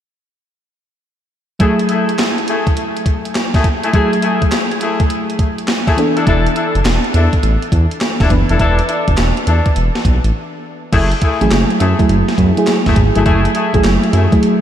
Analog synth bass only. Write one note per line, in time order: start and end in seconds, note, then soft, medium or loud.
6.27 6.48 E1 loud
6.75 6.82 F#1 medium
6.85 6.99 E1 medium
7.14 7.28 E2 loud
7.43 7.57 A1 loud
7.72 7.86 E2 loud
8.20 8.28 E1 medium
8.30 8.44 F#1 medium
8.50 8.57 F1 medium
8.60 8.81 E1 loud
9.08 9.15 F#1 medium
9.19 9.32 E1 medium
9.47 9.61 E2 loud
9.76 9.90 E1 medium
10.05 10.19 B1 medium
10.24 10.31 A1 medium
10.93 11.14 F#1 loud
11.41 11.48 A1 medium
11.51 11.65 F#1 medium
11.81 11.94 F#2 loud
12.09 12.23 F#1 medium
12.38 12.52 F#2 loud
12.86 12.94 F#1 medium
12.97 13.10 G#1 medium
13.16 13.23 G1 medium
13.26 13.47 F#1 loud
13.74 13.81 A1 medium
13.84 13.98 F#1 medium
14.13 14.27 F#2 loud